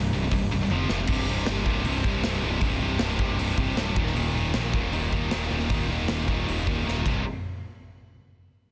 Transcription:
0.00 0.11 C2 medium
0.00 0.12 G2 medium
0.13 0.28 C1 medium
0.13 0.22 C2 medium
0.13 0.21 G2 medium
0.22 0.31 C2 medium
0.22 0.31 G2 medium
0.31 0.47 C1 medium
0.31 0.49 C2 medium
0.31 0.49 G2 medium
0.31 kick medium
0.31 open hi-hat medium
0.51 0.66 C1 medium
0.51 0.60 C2 medium
0.51 0.60 G2 medium
0.61 0.70 C2 medium
0.61 0.70 G2 medium
0.70 0.85 F1 medium
0.70 0.88 F2 loud
0.70 0.88 C3 loud
0.70 0.89 F3 loud
0.70 high tom medium
0.89 1.04 F1 medium
0.89 0.98 F2 medium
0.89 0.98 C3 loud
0.89 0.98 F3 loud
0.89 snare medium
0.99 1.07 F2 medium
0.99 1.07 C3 medium
1.07 1.26 C1 medium
1.07 1.27 C2 medium
1.07 1.27 G2 loud
1.07 1.29 C3 loud
1.07 kick loud
1.07 crash loud
1.27 1.46 C1 medium
1.27 1.47 C2 medium
1.27 1.47 G2 medium
1.27 1.48 C3 medium
1.46 1.65 G1 medium
1.46 1.65 C2 medium
1.46 1.65 G2 medium
1.46 1.65 C3 medium
1.46 snare loud
1.46 open hi-hat medium
1.66 1.84 C1 medium
1.66 1.85 C2 medium
1.66 1.85 G2 loud
1.66 1.85 C3 medium
1.66 kick medium
1.85 2.03 C1 loud
1.85 2.04 C2 medium
1.85 2.04 G2 medium
1.85 2.05 C3 loud
1.85 open hi-hat medium
2.04 2.22 C2 medium
2.04 2.23 C2 medium
2.04 2.23 G2 medium
2.04 2.24 C3 loud
2.04 kick medium
2.23 2.42 C1 medium
2.23 2.44 C2 medium
2.23 2.44 G2 medium
2.23 2.44 C3 medium
2.23 snare medium
2.23 open hi-hat medium
2.43 2.61 C1 medium
2.43 2.61 C2 medium
2.43 2.62 G2 medium
2.43 2.62 C3 loud
2.61 2.80 C1 loud
2.61 2.81 C2 loud
2.61 2.81 G2 loud
2.61 2.81 C3 loud
2.61 kick loud
2.61 open hi-hat medium
2.82 2.99 C1 medium
2.82 3.00 C2 medium
2.82 3.01 G2 medium
2.82 3.01 C3 medium
2.99 3.18 C1 medium
2.99 3.20 C2 medium
2.99 3.20 G2 medium
2.99 3.20 C3 medium
2.99 snare loud
2.99 open hi-hat medium
3.19 3.37 C1 medium
3.19 3.38 C2 loud
3.19 3.38 G2 medium
3.19 3.38 C3 medium
3.19 kick medium
3.39 3.57 C1 medium
3.39 3.57 C2 medium
3.39 3.57 G2 medium
3.39 3.58 C3 loud
3.39 open hi-hat medium
3.57 3.76 C1 medium
3.57 3.76 C2 medium
3.57 3.77 G2 medium
3.57 3.76 C3 loud
3.57 kick medium
3.76 3.95 D1 medium
3.76 3.95 C2 medium
3.76 3.95 G2 medium
3.76 3.95 C3 medium
3.76 snare loud
3.76 open hi-hat soft
3.95 4.15 D#1 medium
3.95 4.14 D#2 medium
3.95 4.14 A#2 loud
3.95 4.15 D#3 loud
3.95 kick loud
4.07 snare soft
4.14 4.34 D#1 medium
4.14 4.34 D#2 loud
4.14 4.34 A#2 loud
4.14 4.35 D#3 loud
4.14 open hi-hat medium
4.34 4.53 D#1 medium
4.34 4.55 D#2 medium
4.34 4.54 A#2 medium
4.34 4.55 D#3 medium
4.54 4.73 A#1 loud
4.54 4.73 D#2 medium
4.54 4.73 A#2 medium
4.54 4.74 D#3 medium
4.54 snare loud
4.54 open hi-hat medium
4.74 4.92 D#1 medium
4.74 4.92 D#2 medium
4.74 4.92 A#2 medium
4.74 4.92 D#3 loud
4.74 kick medium
4.93 5.12 D#1 medium
4.93 5.11 D#2 medium
4.93 5.12 A#2 medium
4.93 5.12 D#3 loud
4.93 open hi-hat medium
5.13 5.32 D#2 medium
5.13 5.31 D#2 medium
5.13 5.32 A#2 medium
5.13 5.32 D#3 loud
5.13 kick medium
5.31 5.50 D#1 medium
5.31 5.50 D#2 medium
5.31 5.50 A#2 medium
5.31 5.50 D#3 medium
5.31 snare loud
5.31 open hi-hat medium
5.51 5.69 D#1 medium
5.51 5.69 D#2 medium
5.51 5.69 A#2 medium
5.51 5.70 D#3 loud
5.60 snare soft
5.69 5.89 D#1 medium
5.69 5.90 D#2 medium
5.69 5.90 A#2 loud
5.69 5.90 D#3 loud
5.69 kick loud
5.69 open hi-hat medium
5.90 6.08 D#1 medium
5.90 6.08 D#2 medium
5.90 6.08 A#2 medium
5.90 6.09 D#3 medium
6.08 6.27 D#1 medium
6.08 6.27 D#2 medium
6.08 6.27 A#2 medium
6.08 6.28 D#3 loud
6.08 snare loud
6.08 open hi-hat medium
6.28 6.46 D#1 medium
6.28 6.47 D#2 loud
6.28 6.47 A#2 medium
6.28 6.49 D#3 medium
6.28 kick medium
6.48 6.66 D#1 medium
6.48 6.66 D#2 loud
6.48 6.66 A#2 medium
6.48 6.67 D#3 loud
6.48 open hi-hat medium
6.67 6.85 D#1 medium
6.67 6.85 D#2 medium
6.67 6.85 A#2 medium
6.67 6.86 D#3 medium
6.67 kick medium
6.86 7.04 D#1 medium
6.86 7.05 D#2 medium
6.86 7.06 A#2 medium
6.86 7.06 D#3 medium
6.86 snare medium
7.06 7.24 C1 medium
7.06 7.21 C2 medium
7.06 7.21 G2 medium
7.06 7.22 C3 loud
7.06 kick loud
7.06 crash medium

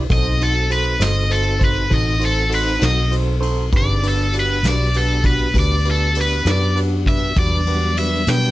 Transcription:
0.09 0.98 B1 medium
0.09 3.70 C4 medium
0.09 0.33 D#4 medium
0.09 3.71 D#4 medium
0.09 0.33 F#4 medium
0.09 3.70 F#4 medium
0.09 0.32 A4 medium
0.09 3.70 A4 medium
0.09 0.33 C5 medium
0.09 0.41 D#5 loud
0.09 kick loud
0.09 ride medium
0.41 0.63 D#4 medium
0.41 0.63 F#4 soft
0.41 0.63 A4 medium
0.41 0.71 A4 medium
0.41 0.63 C5 medium
0.41 ride medium
0.70 0.93 D#4 medium
0.70 0.93 F#4 medium
0.70 0.93 A4 soft
0.70 1.01 B4 medium
0.70 0.93 C5 medium
0.70 ride medium
0.99 1.88 G1 loud
0.99 1.23 D#4 medium
0.99 1.23 F#4 medium
0.99 1.23 A4 medium
0.99 1.23 C5 medium
0.99 1.31 D#5 loud
0.99 snare loud
0.99 ride medium
1.29 1.53 D#4 medium
1.29 1.53 F#4 soft
1.29 1.53 A4 soft
1.29 1.61 A4 medium
1.29 1.53 C5 medium
1.29 ride medium
1.59 1.83 D#4 medium
1.59 1.83 F#4 soft
1.59 1.83 A4 soft
1.59 1.83 C5 medium
1.59 kick medium
1.59 ride medium
1.64 1.92 B4 medium
1.90 2.79 A1 medium
1.90 2.14 D#4 medium
1.90 2.14 F#4 soft
1.90 2.14 A4 medium
1.90 2.14 C5 medium
1.90 2.22 D#5 loud
1.90 kick medium
1.90 ride medium
2.19 2.43 D#4 medium
2.19 2.43 F#4 medium
2.19 2.43 A4 medium
2.19 2.43 C5 medium
2.19 ride medium
2.25 2.53 A4 loud
2.50 2.73 D#4 medium
2.50 2.74 F#4 soft
2.50 2.74 A4 soft
2.50 2.74 C5 medium
2.50 ride medium
2.55 2.83 B4 medium
2.79 3.70 B1 medium
2.79 3.03 D#4 medium
2.79 3.04 F#4 medium
2.79 3.03 A4 medium
2.79 3.04 C5 medium
2.79 snare loud
2.79 ride medium
2.85 3.13 D#5 loud
3.11 3.34 D#4 medium
3.11 3.35 F#4 soft
3.11 3.35 A4 soft
3.11 3.35 C5 medium
3.11 ride medium
3.40 3.64 D#4 medium
3.40 3.64 F#4 medium
3.40 3.64 A4 medium
3.40 3.64 C5 medium
3.40 ride medium
3.72 4.61 G1 medium
3.72 4.05 C4 medium
3.72 3.95 D4 medium
3.72 4.05 D#4 medium
3.72 3.96 F#4 medium
3.72 3.95 G4 medium
3.72 4.02 G4 medium
3.72 4.05 G#4 medium
3.72 3.96 B4 medium
3.72 kick loud
3.72 ride medium
3.77 4.05 D5 loud
4.03 7.34 B3 medium
4.03 4.26 D4 medium
4.03 7.34 D4 medium
4.03 4.26 F#4 medium
4.03 7.33 F#4 medium
4.03 4.26 G4 medium
4.03 7.33 G4 medium
4.03 4.26 B4 medium
4.03 ride medium
4.08 4.35 A4 medium
4.33 4.56 D4 medium
4.33 4.57 F#4 medium
4.33 4.57 G4 medium
4.33 4.57 B4 medium
4.33 ride medium
4.40 4.66 B4 medium
4.63 5.51 B1 medium
4.63 4.87 D4 medium
4.63 4.87 F#4 medium
4.63 4.87 G4 medium
4.63 4.88 B4 medium
4.63 snare medium
4.63 ride medium
4.68 4.96 D5 loud
4.94 5.17 D4 medium
4.94 5.18 F#4 medium
4.94 5.18 G4 soft
4.94 5.25 A4 medium
4.94 5.18 B4 medium
4.94 ride medium
5.24 5.47 D4 medium
5.24 5.47 F#4 soft
5.24 5.47 G4 medium
5.24 5.47 B4 medium
5.24 5.55 B4 medium
5.24 kick medium
5.24 ride medium
5.54 6.42 D2 loud
5.54 5.78 D4 medium
5.54 5.78 F#4 medium
5.54 5.78 G4 medium
5.54 5.78 B4 medium
5.54 kick medium
5.54 snare soft
5.54 ride medium
5.59 5.86 D5 loud
5.85 6.08 D4 medium
5.85 6.08 F#4 medium
5.85 6.08 G4 medium
5.85 6.08 B4 medium
5.85 ride medium
5.91 6.17 A4 loud
6.15 6.39 D4 medium
6.15 6.39 F#4 medium
6.15 6.39 G4 medium
6.15 6.39 B4 medium
6.15 ride medium
6.21 6.48 B4 loud
6.45 7.34 F#2 medium
6.45 6.69 D4 medium
6.45 6.69 F#4 medium
6.45 6.69 G4 medium
6.45 6.70 B4 medium
6.45 snare loud
6.45 ride medium
6.51 6.78 D5 medium
6.76 6.99 D4 medium
6.76 6.99 F#4 medium
6.76 6.99 G4 soft
6.76 6.99 B4 medium
6.76 ride medium
7.06 7.29 D4 medium
7.06 7.29 F#4 soft
7.06 7.29 G4 medium
7.06 7.29 B4 medium
7.06 7.37 E5 loud
7.06 kick medium
7.06 ride medium
7.36 8.25 E2 medium
7.36 8.51 F#3 medium
7.36 8.51 G3 medium
7.36 8.51 B3 medium
7.36 8.51 D4 medium
7.36 7.60 D4 medium
7.36 7.60 F#4 medium
7.36 7.60 G4 medium
7.36 7.60 B4 medium
7.36 7.97 D5 loud
7.36 kick loud
7.36 ride medium
7.67 7.90 D4 medium
7.67 7.90 F#4 medium
7.67 7.90 G4 medium
7.67 7.90 B4 medium
7.67 ride medium
7.97 8.21 D4 medium
7.97 8.21 F#4 medium
7.97 8.21 G4 medium
7.97 8.21 B4 medium
7.97 8.27 E5 medium
7.97 ride medium
8.27 8.51 B2 medium
8.27 8.51 D4 medium
8.27 8.51 F#4 medium
8.27 8.51 G4 medium
8.27 8.51 B4 medium
8.27 8.51 G5 loud
8.27 snare loud
8.27 ride medium

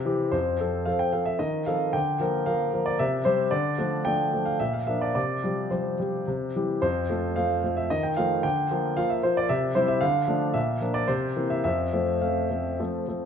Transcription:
0.00 0.35 C3 medium
0.05 0.30 E3 soft
0.05 0.30 C4 soft
0.05 0.31 G4 soft
0.32 0.59 F2 soft
0.32 0.86 C5 medium
0.60 0.84 F3 soft
0.60 0.85 C4 soft
0.60 0.85 A4 soft
0.85 1.11 F3 soft
0.85 1.11 C4 soft
0.85 1.11 A4 soft
0.85 1.00 F5 medium
0.99 1.13 G5 medium
1.12 1.37 F3 soft
1.12 1.38 C4 soft
1.12 1.38 A4 soft
1.12 1.27 F5 medium
1.25 1.40 E5 medium
1.39 1.66 D#3 medium
1.39 1.67 D#5 medium
1.66 1.91 F3 soft
1.66 1.92 C4 soft
1.66 1.92 A4 soft
1.66 1.94 F5 medium
1.93 2.20 D3 medium
1.93 2.47 G5 medium
2.20 2.44 F3 soft
2.20 2.44 A#3 soft
2.20 2.44 A#4 soft
2.46 2.71 F3 soft
2.46 2.71 A#3 soft
2.46 2.71 A#4 soft
2.46 2.86 F5 medium
2.73 2.97 F3 soft
2.73 2.97 A#3 soft
2.73 2.97 A#4 soft
2.86 2.99 D5 medium
2.99 3.25 C3 medium
2.99 3.26 E5 medium
3.25 3.49 G3 soft
3.25 3.50 C4 soft
3.25 3.50 G4 soft
3.25 3.52 C5 medium
3.51 3.78 D3 medium
3.51 4.05 D5 medium
3.78 4.03 F3 soft
3.78 4.03 A3 soft
3.78 4.03 D4 medium
4.05 4.30 F3 soft
4.05 4.30 A3 soft
4.05 4.30 D4 soft
4.05 4.46 G5 medium
4.33 4.57 F3 soft
4.33 4.58 A3 soft
4.33 4.58 D4 soft
4.45 4.60 F5 medium
4.60 4.87 A#2 soft
4.60 4.74 E5 medium
4.73 4.87 F5 medium
4.87 5.12 F3 soft
4.87 5.13 A#3 soft
4.87 5.13 D4 soft
4.87 5.01 E5 medium
5.01 5.14 D5 medium
5.15 5.43 C3 soft
5.15 5.71 D5 medium
5.43 5.69 F3 soft
5.43 5.69 G3 soft
5.43 5.69 G4 soft
5.71 5.97 F3 soft
5.71 5.97 G3 soft
5.71 5.97 G4 soft
5.71 6.54 C5 soft
6.00 6.24 F3 soft
6.00 6.25 G3 soft
6.00 6.25 G4 soft
6.28 6.54 C3 soft
6.56 6.80 E3 soft
6.56 6.80 G3 soft
6.56 6.80 G4 soft
6.82 7.09 F2 medium
6.82 7.37 C5 medium
7.10 7.34 F3 soft
7.10 7.34 A3 soft
7.10 7.34 F4 soft
7.36 7.61 F3 soft
7.36 7.61 A3 soft
7.36 7.61 F4 soft
7.36 7.77 F5 medium
7.63 7.88 F3 soft
7.63 7.88 A3 soft
7.63 7.88 F4 soft
7.77 7.90 E5 medium
7.90 8.17 D#3 medium
7.90 8.04 D#5 medium
8.03 8.17 G5 medium
8.17 8.41 F3 soft
8.17 8.41 A3 soft
8.17 8.41 F4 soft
8.17 8.43 F5 medium
8.43 8.70 D3 medium
8.43 8.97 G5 medium
8.70 8.94 F3 soft
8.70 8.95 A#3 soft
8.70 8.95 F4 soft
8.97 9.21 F3 soft
8.97 9.21 A#3 soft
8.97 9.21 F4 soft
8.97 9.10 F5 medium
9.10 9.23 E5 medium
9.23 9.47 F3 soft
9.23 9.48 A#3 soft
9.23 9.48 F4 soft
9.23 9.37 C5 medium
9.37 9.50 D5 medium
9.49 9.75 C3 medium
9.49 9.75 E5 medium
9.75 9.99 G3 soft
9.75 9.99 C4 soft
9.75 10.00 E4 soft
9.75 9.88 C5 medium
9.88 10.02 E5 medium
10.01 10.27 D3 medium
10.01 10.54 F5 medium
10.28 10.52 F3 soft
10.28 10.52 A3 soft
10.28 10.53 D4 medium
10.54 10.81 A#2 medium
10.54 10.94 E5 medium
10.81 11.06 F3 soft
10.81 11.06 A#3 soft
10.81 11.06 D4 soft
10.94 11.08 D5 medium
11.08 11.35 C3 medium
11.08 11.50 C5 medium
11.36 11.62 E3 soft
11.36 11.62 A#3 soft
11.36 11.62 C4 soft
11.50 11.63 E5 medium
11.64 11.93 F2 medium
11.64 12.22 E5 medium
11.93 12.19 F3 soft
11.93 12.19 A3 soft
11.93 12.20 C4 soft
12.21 12.48 F3 soft
12.21 12.48 A3 soft
12.21 12.48 C4 soft
12.21 12.79 F5 soft
12.51 12.76 F3 soft
12.51 12.76 A3 soft
12.51 12.77 C4 soft
12.80 13.05 F3 soft
12.80 13.05 A3 soft
12.80 13.05 C4 soft
13.08 13.25 F3 soft
13.08 13.25 A3 soft
13.08 13.25 C4 soft

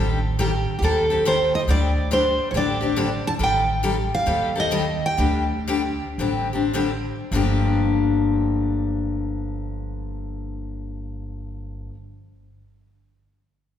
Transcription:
0.00 0.64 A1 medium
0.00 0.18 D#3 medium
0.00 0.18 G3 medium
0.00 0.18 C4 medium
0.00 0.18 G4 medium
0.00 0.18 A4 medium
0.39 0.50 D#3 medium
0.39 0.50 G3 medium
0.39 0.50 C4 medium
0.39 0.51 G4 medium
0.39 0.77 G4 medium
0.39 0.51 A4 medium
0.79 1.50 D#2 medium
0.79 1.04 D#3 medium
0.79 0.83 G4 medium
0.83 1.04 G3 medium
0.83 1.04 C4 medium
0.83 1.04 G4 medium
0.83 1.05 A4 medium
0.83 1.23 A4 medium
1.10 1.25 C4 soft
1.10 1.25 G4 soft
1.10 1.24 A4 medium
1.25 1.37 D#3 medium
1.25 1.37 G3 medium
1.25 1.37 C4 medium
1.25 1.37 G4 medium
1.25 1.37 A4 medium
1.25 1.54 C5 medium
1.55 1.60 D#5 medium
1.67 2.36 D2 medium
1.67 1.89 D3 medium
1.67 1.90 G3 medium
1.67 1.90 C4 medium
1.67 1.90 D4 medium
1.67 1.90 G4 medium
1.67 2.13 D5 medium
2.11 2.22 D3 medium
2.11 2.22 G3 medium
2.11 2.22 C4 medium
2.11 2.23 D4 medium
2.11 2.23 G4 medium
2.11 2.50 C5 medium
2.51 3.21 A1 medium
2.51 2.76 D3 medium
2.51 2.76 G3 medium
2.51 2.76 C4 medium
2.51 2.54 C#5 medium
2.55 2.76 D4 medium
2.55 2.76 G4 medium
2.55 3.27 D5 medium
2.81 2.96 C4 medium
2.81 2.96 D4 medium
2.81 2.95 G4 medium
2.96 3.08 D3 medium
2.96 3.08 G3 medium
2.96 3.08 C4 medium
2.96 3.09 D4 medium
2.96 3.09 G4 medium
3.27 3.32 A5 medium
3.39 4.09 A1 medium
3.39 3.61 D#3 medium
3.39 3.61 G3 medium
3.39 3.61 C4 medium
3.39 3.62 G4 medium
3.39 3.62 A4 medium
3.43 3.82 G5 medium
3.83 3.94 D#3 medium
3.83 3.95 G3 medium
3.83 3.95 C4 medium
3.83 3.95 G4 medium
3.83 3.95 A4 loud
4.14 4.58 F5 medium
4.26 5.00 D#2 medium
4.26 4.49 D#3 medium
4.26 4.49 G3 medium
4.26 4.49 C4 medium
4.26 4.49 G4 medium
4.26 4.50 A4 medium
4.56 4.71 C4 soft
4.56 4.71 G4 medium
4.56 4.71 A4 medium
4.60 5.05 D#5 medium
4.71 4.84 D#3 medium
4.71 4.84 G3 medium
4.71 4.84 C4 medium
4.71 4.84 G4 medium
4.71 4.84 A4 medium
5.06 6.71 G5 medium
5.17 5.98 D2 medium
5.17 5.42 D3 medium
5.17 5.43 G3 medium
5.17 5.43 C4 medium
5.17 5.43 D4 medium
5.17 5.43 G4 medium
5.67 5.81 D3 medium
5.67 5.81 G3 medium
5.67 5.81 C4 medium
5.67 5.81 D4 medium
5.67 5.82 G4 medium
6.18 7.09 A1 medium
6.18 6.46 D3 medium
6.18 6.46 G3 medium
6.18 6.47 C4 medium
6.18 6.47 D4 medium
6.18 6.47 G4 medium
6.53 6.73 C4 soft
6.53 6.73 D4 medium
6.53 6.72 G4 medium
6.73 6.89 D3 medium
6.73 6.89 G3 medium
6.73 6.89 C4 medium
6.73 6.90 D4 medium
6.73 6.90 G4 medium
7.31 11.88 G1 medium
7.31 11.92 G2 medium
7.31 11.93 D3 medium
7.31 11.94 F3 medium
7.31 11.95 A#3 medium
7.31 11.95 D4 medium
7.31 11.96 G4 medium

